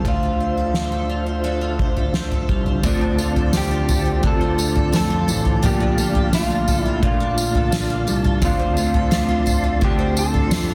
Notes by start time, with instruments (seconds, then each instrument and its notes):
Already playing: twelve-string acoustic guitar F3 F4 C5, tonewheel organ D4
0.04 grand piano D2, tonewheel organ D3 F4 C5 E5, twelve-string acoustic guitar D3 A4, kick, floor tom
0.08 clean electric guitar F4
0.23 twelve-string acoustic guitar F4
0.40 twelve-string acoustic guitar C5
0.58 twelve-string acoustic guitar A4
0.74 twelve-string acoustic guitar C5, snare
0.92 twelve-string acoustic guitar A4
1.09 twelve-string acoustic guitar F4
1.26 twelve-string acoustic guitar C5
1.44 twelve-string acoustic guitar D3 A4
1.61 twelve-string acoustic guitar F4
1.79 twelve-string acoustic guitar C5, kick
1.97 twelve-string acoustic guitar A4, floor tom
2.14 twelve-string acoustic guitar C5, snare
2.31 twelve-string acoustic guitar A4, floor tom
2.49 grand piano C2, twelve-string acoustic guitar F4, kick, floor tom
2.66 twelve-string acoustic guitar C5, floor tom
2.83 grand piano D2, clean electric guitar D3 A3 C4 F4, twelve-string acoustic guitar D3, tonewheel organ F4 C5 D5 A5, kick, floor tom, tambourine
2.87 clean electric guitar A4
3.01 twelve-string acoustic guitar C4
3.17 twelve-string acoustic guitar F4, clean electric guitar F4 A4, tambourine
3.23 clean electric guitar C4
3.36 twelve-string acoustic guitar A4, floor tom
3.53 twelve-string acoustic guitar A3, snare, tambourine
3.57 clean electric guitar G4
3.71 twelve-string acoustic guitar F4
3.88 twelve-string acoustic guitar A4, floor tom, tambourine
4.05 twelve-string acoustic guitar F4
4.20 twelve-string acoustic guitar D3, clean electric guitar A3, kick
4.25 clean electric guitar C4 F4 A4
4.32 clean electric guitar A4
4.41 twelve-string acoustic guitar C4
4.58 twelve-string acoustic guitar F4, tambourine
4.75 twelve-string acoustic guitar A4, floor tom
4.92 grand piano F2, twelve-string acoustic guitar A3, clean electric guitar A4, snare, tambourine
5.10 twelve-string acoustic guitar F4
5.28 grand piano A1, twelve-string acoustic guitar A4, tambourine
5.45 twelve-string acoustic guitar F4, floor tom
5.62 grand piano A#1, clean electric guitar A#2 D3 A3 D4 F4 G4 A4, twelve-string acoustic guitar A#2, tonewheel organ F5, floor tom, tambourine
5.80 twelve-string acoustic guitar D4
5.97 clean electric guitar D4 F4 A4, twelve-string acoustic guitar F4, tambourine
6.03 clean electric guitar A3
6.15 twelve-string acoustic guitar A4, floor tom
6.33 twelve-string acoustic guitar A3, clean electric guitar F4, snare, tambourine
6.50 twelve-string acoustic guitar F4
6.68 twelve-string acoustic guitar A4, floor tom, tambourine
6.81 clean electric guitar E4
6.86 twelve-string acoustic guitar F4
6.99 clean electric guitar A3, kick
7.03 twelve-string acoustic guitar A#2, clean electric guitar D4 F4
7.08 clean electric guitar F4 A4
7.20 twelve-string acoustic guitar D4
7.38 twelve-string acoustic guitar F4, tambourine
7.55 twelve-string acoustic guitar A4, floor tom
7.72 twelve-string acoustic guitar A3, snare, tambourine
7.90 twelve-string acoustic guitar F4
8.07 grand piano C2, twelve-string acoustic guitar A4, tambourine
8.24 twelve-string acoustic guitar F4, floor tom
8.41 grand piano D2, clean electric guitar D3 A3 C4 F4 A4, twelve-string acoustic guitar D3, tonewheel organ D5 A5 C6, kick, floor tom, tambourine
8.45 clean electric guitar F4
8.59 twelve-string acoustic guitar C4
8.76 twelve-string acoustic guitar F4, clean electric guitar F4 A4, tambourine
8.82 clean electric guitar C4
8.94 twelve-string acoustic guitar A4, floor tom
9.11 twelve-string acoustic guitar A3, snare, tambourine
9.29 twelve-string acoustic guitar F4
9.46 twelve-string acoustic guitar A4, floor tom, tambourine
9.64 twelve-string acoustic guitar F4
9.78 twelve-string acoustic guitar D3, clean electric guitar A3, kick
9.83 clean electric guitar C4 F4 G4
9.91 clean electric guitar A4
9.99 twelve-string acoustic guitar C4
10.16 twelve-string acoustic guitar F4, clean electric guitar A4, tambourine
10.34 twelve-string acoustic guitar A4, floor tom
10.51 grand piano F2, twelve-string acoustic guitar A3, snare, tambourine
10.69 twelve-string acoustic guitar F4